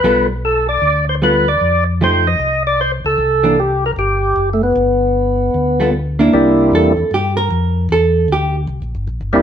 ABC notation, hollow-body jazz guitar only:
X:1
M:4/4
L:1/8
Q:"Swing" 1/4=153
K:Gdor
V:1 name="Hollow-body jazz guitar"
[G,=B,FA] z4 z [G,B,FA] z | z2 [F,A,_EG] z4 z | z [E,B,D] z6 | z4 z [G,=B,FA] z [_B,DE]- |
[B,DE]2 A2 G B3 | A2 G z4 z |]